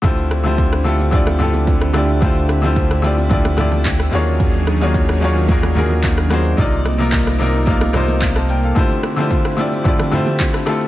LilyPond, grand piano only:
\new Staff \with { instrumentName = "Grand piano" } { \time 4/4 \key ees \lydian \tempo 4 = 110 << { r1 | r1 | r1 | r2. r16 <c'' a''>16 <bes' g''>16 <a' f''>16~ |
<a' f''>16 r2. r8. | } \\ { <d a e' f' g' c''>8 r16 <d a e' f' g' c''>8 r16 <d a e' f' g' a'>8 <d a e' f' g' d''>8 <d a e' f' g' a'>8. r16 <d a e' f' g' d''>8 | <d a e' f' g' c''>8 r16 <d a e' f' g' c''>8 r16 <d a e' f' g' d''>8 <d a e' f' g' d''>8 <d a e' f' g' d''>8. r16 <ees bes f' ges' aes' des''>8~ | <ees bes f' ges' aes' des''>8 r16 <ees bes f' ges' aes' des''>8 r16 <ees bes f' ges' aes' des''>8 <ees bes f' ges' aes' bes'>8 <ees bes f' ges' aes' bes'>8. r16 <ees bes f' ges' aes' c''>8 | <c bes ees' f' d''>8 r16 <c bes ees' f' bes'>8 r16 <c bes ees' f' bes'>8 <c bes ees' f' f''>8 <c bes ees' f' c''>8. r8. |
<d a e' f' g' c''>8 r16 <d a e' f' g' c''>8 r16 <d a e' f' g' d''>8 <d a e' f' g' d''>8 <d a e' f' g' c''>8. r16 <d a e' f' g' a'>8 | } >> }